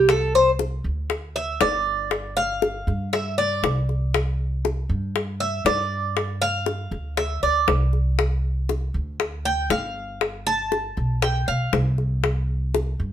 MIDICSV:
0, 0, Header, 1, 4, 480
1, 0, Start_track
1, 0, Key_signature, 0, "major"
1, 0, Tempo, 506329
1, 82, Time_signature, 4, 2, 24, 8
1, 12443, End_track
2, 0, Start_track
2, 0, Title_t, "Cuban tres"
2, 0, Program_c, 0, 25
2, 90, Note_on_c, 0, 69, 77
2, 319, Note_off_c, 0, 69, 0
2, 333, Note_on_c, 0, 72, 97
2, 474, Note_off_c, 0, 72, 0
2, 1287, Note_on_c, 0, 76, 93
2, 1518, Note_off_c, 0, 76, 0
2, 1527, Note_on_c, 0, 74, 85
2, 2207, Note_off_c, 0, 74, 0
2, 2243, Note_on_c, 0, 77, 106
2, 2926, Note_off_c, 0, 77, 0
2, 2966, Note_on_c, 0, 76, 86
2, 3198, Note_off_c, 0, 76, 0
2, 3203, Note_on_c, 0, 74, 101
2, 3436, Note_off_c, 0, 74, 0
2, 5123, Note_on_c, 0, 76, 108
2, 5356, Note_off_c, 0, 76, 0
2, 5364, Note_on_c, 0, 74, 84
2, 6046, Note_off_c, 0, 74, 0
2, 6082, Note_on_c, 0, 77, 115
2, 6765, Note_off_c, 0, 77, 0
2, 6801, Note_on_c, 0, 76, 87
2, 7035, Note_off_c, 0, 76, 0
2, 7042, Note_on_c, 0, 74, 89
2, 7276, Note_off_c, 0, 74, 0
2, 8962, Note_on_c, 0, 79, 113
2, 9196, Note_off_c, 0, 79, 0
2, 9203, Note_on_c, 0, 77, 83
2, 9886, Note_off_c, 0, 77, 0
2, 9922, Note_on_c, 0, 81, 115
2, 10606, Note_off_c, 0, 81, 0
2, 10640, Note_on_c, 0, 79, 90
2, 10875, Note_off_c, 0, 79, 0
2, 10881, Note_on_c, 0, 77, 93
2, 11116, Note_off_c, 0, 77, 0
2, 12443, End_track
3, 0, Start_track
3, 0, Title_t, "Upright bass"
3, 0, Program_c, 1, 32
3, 0, Note_on_c, 1, 36, 86
3, 740, Note_off_c, 1, 36, 0
3, 800, Note_on_c, 1, 38, 86
3, 1484, Note_off_c, 1, 38, 0
3, 1524, Note_on_c, 1, 31, 84
3, 2662, Note_off_c, 1, 31, 0
3, 2721, Note_on_c, 1, 43, 90
3, 3405, Note_off_c, 1, 43, 0
3, 3439, Note_on_c, 1, 36, 83
3, 4579, Note_off_c, 1, 36, 0
3, 4640, Note_on_c, 1, 43, 92
3, 5324, Note_off_c, 1, 43, 0
3, 5354, Note_on_c, 1, 43, 86
3, 6497, Note_off_c, 1, 43, 0
3, 6554, Note_on_c, 1, 38, 93
3, 7005, Note_off_c, 1, 38, 0
3, 7040, Note_on_c, 1, 38, 69
3, 7265, Note_off_c, 1, 38, 0
3, 7276, Note_on_c, 1, 36, 85
3, 8418, Note_off_c, 1, 36, 0
3, 8477, Note_on_c, 1, 38, 94
3, 9163, Note_off_c, 1, 38, 0
3, 9194, Note_on_c, 1, 31, 86
3, 10338, Note_off_c, 1, 31, 0
3, 10403, Note_on_c, 1, 35, 92
3, 10851, Note_off_c, 1, 35, 0
3, 10881, Note_on_c, 1, 35, 75
3, 11107, Note_off_c, 1, 35, 0
3, 11117, Note_on_c, 1, 36, 91
3, 12260, Note_off_c, 1, 36, 0
3, 12320, Note_on_c, 1, 43, 89
3, 12443, Note_off_c, 1, 43, 0
3, 12443, End_track
4, 0, Start_track
4, 0, Title_t, "Drums"
4, 83, Note_on_c, 9, 60, 69
4, 178, Note_off_c, 9, 60, 0
4, 562, Note_on_c, 9, 60, 57
4, 657, Note_off_c, 9, 60, 0
4, 1041, Note_on_c, 9, 60, 66
4, 1136, Note_off_c, 9, 60, 0
4, 1523, Note_on_c, 9, 60, 73
4, 1523, Note_on_c, 9, 61, 82
4, 1617, Note_off_c, 9, 60, 0
4, 1617, Note_off_c, 9, 61, 0
4, 2001, Note_on_c, 9, 60, 71
4, 2096, Note_off_c, 9, 60, 0
4, 2247, Note_on_c, 9, 60, 35
4, 2342, Note_off_c, 9, 60, 0
4, 2485, Note_on_c, 9, 60, 59
4, 2580, Note_off_c, 9, 60, 0
4, 2731, Note_on_c, 9, 60, 35
4, 2825, Note_off_c, 9, 60, 0
4, 2970, Note_on_c, 9, 60, 67
4, 3065, Note_off_c, 9, 60, 0
4, 3447, Note_on_c, 9, 60, 74
4, 3447, Note_on_c, 9, 61, 83
4, 3542, Note_off_c, 9, 60, 0
4, 3542, Note_off_c, 9, 61, 0
4, 3688, Note_on_c, 9, 60, 32
4, 3783, Note_off_c, 9, 60, 0
4, 3929, Note_on_c, 9, 60, 75
4, 4024, Note_off_c, 9, 60, 0
4, 4407, Note_on_c, 9, 60, 62
4, 4501, Note_off_c, 9, 60, 0
4, 4888, Note_on_c, 9, 60, 68
4, 4983, Note_off_c, 9, 60, 0
4, 5365, Note_on_c, 9, 60, 70
4, 5365, Note_on_c, 9, 61, 84
4, 5460, Note_off_c, 9, 60, 0
4, 5460, Note_off_c, 9, 61, 0
4, 5846, Note_on_c, 9, 60, 67
4, 5941, Note_off_c, 9, 60, 0
4, 6082, Note_on_c, 9, 60, 37
4, 6177, Note_off_c, 9, 60, 0
4, 6317, Note_on_c, 9, 60, 61
4, 6412, Note_off_c, 9, 60, 0
4, 6560, Note_on_c, 9, 60, 37
4, 6655, Note_off_c, 9, 60, 0
4, 6801, Note_on_c, 9, 60, 70
4, 6896, Note_off_c, 9, 60, 0
4, 7279, Note_on_c, 9, 60, 70
4, 7279, Note_on_c, 9, 61, 82
4, 7374, Note_off_c, 9, 60, 0
4, 7374, Note_off_c, 9, 61, 0
4, 7518, Note_on_c, 9, 60, 33
4, 7613, Note_off_c, 9, 60, 0
4, 7761, Note_on_c, 9, 60, 74
4, 7856, Note_off_c, 9, 60, 0
4, 8241, Note_on_c, 9, 60, 61
4, 8336, Note_off_c, 9, 60, 0
4, 8720, Note_on_c, 9, 60, 67
4, 8815, Note_off_c, 9, 60, 0
4, 9199, Note_on_c, 9, 60, 72
4, 9199, Note_on_c, 9, 61, 84
4, 9294, Note_off_c, 9, 60, 0
4, 9294, Note_off_c, 9, 61, 0
4, 9680, Note_on_c, 9, 60, 72
4, 9775, Note_off_c, 9, 60, 0
4, 9921, Note_on_c, 9, 60, 36
4, 10016, Note_off_c, 9, 60, 0
4, 10161, Note_on_c, 9, 60, 60
4, 10256, Note_off_c, 9, 60, 0
4, 10400, Note_on_c, 9, 60, 35
4, 10495, Note_off_c, 9, 60, 0
4, 10640, Note_on_c, 9, 60, 69
4, 10735, Note_off_c, 9, 60, 0
4, 11119, Note_on_c, 9, 60, 68
4, 11119, Note_on_c, 9, 61, 87
4, 11214, Note_off_c, 9, 60, 0
4, 11214, Note_off_c, 9, 61, 0
4, 11358, Note_on_c, 9, 60, 32
4, 11453, Note_off_c, 9, 60, 0
4, 11600, Note_on_c, 9, 60, 71
4, 11695, Note_off_c, 9, 60, 0
4, 12082, Note_on_c, 9, 60, 62
4, 12177, Note_off_c, 9, 60, 0
4, 12443, End_track
0, 0, End_of_file